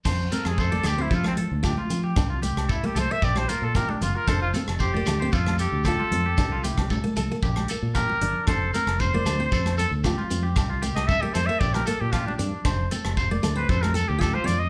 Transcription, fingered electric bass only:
\new Staff \with { instrumentName = "Fingered electric bass" } { \clef bass \time 4/4 \key f \major \tempo 4 = 114 f,8 r16 f,8. d,8 f8. d,8 r16 f8 | c,8. c,8 r16 c,16 r16 bes,,8 r16 bes,8 r16 ges,,16 r16 | f,,8 r16 f,,8. d,8 f,8. d,8 r16 f,8 | c,8. c,8 r16 c,16 r16 bes,,8 r16 bes,8 r16 g,,16 r16 |
f,,8 r16 f,,8. d,8 f,8. d,8 r16 f,8 | c,8. c,8 r16 f,16 r16 bes,,8 r16 bes,8 r16 g,16 r16 | f,,8 r16 f,,8. d,8 f,8. d,8 r16 f,8 | }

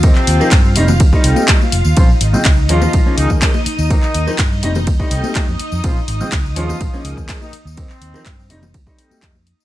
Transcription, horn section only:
\new Staff \with { instrumentName = "Horn section" } { \time 4/4 \key ees \mixolydian \tempo 4 = 124 <c c'>4. r2 r8 | <f f'>16 r4 r16 <f f'>4 <ees ees'>16 r4 r16 | <ees ees'>4 r2. | <f f'>16 r4 r16 <f f'>4 r8. <ees ees'>16 r8 |
c'4. r2 r8 | }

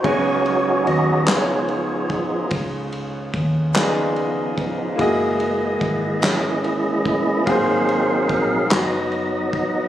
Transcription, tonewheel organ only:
<<
  \new Staff \with { instrumentName = "Tonewheel organ" } { \time 6/8 \key cis \mixolydian \tempo 4. = 48 << { cis''4 dis''8 cis''4 r8 | r2. | r4. gis'4. | bis'4 ais'8 dis''4. | } \\ { <fis' gis'>4. <eis' gis'>4. | r2. | r4. <cis' e'>4. | <dis' gis'>4. r4. | } >> }
  \new Staff \with { instrumentName = "Tonewheel organ" } { \time 6/8 \key cis \mixolydian <fis b dis'>4. <eis b dis'>4. | r4. <eis b dis'>4. | <e gis ais dis''>2. | <fis ais bis eis''>4. <fis b dis'>4. | }
>>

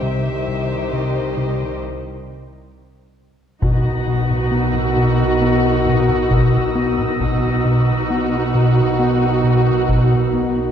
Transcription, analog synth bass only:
\new Staff \with { instrumentName = "Analog synth bass" } { \clef bass \time 4/4 \key b \phrygian \tempo 4 = 67 c8 c8 c8 c8 r2 | b,8 b,8 b8 b,8 b8 b,8 b,8 b8 | b,8 b,8 b8 b,8 b8 b,8 b,8 b8 | }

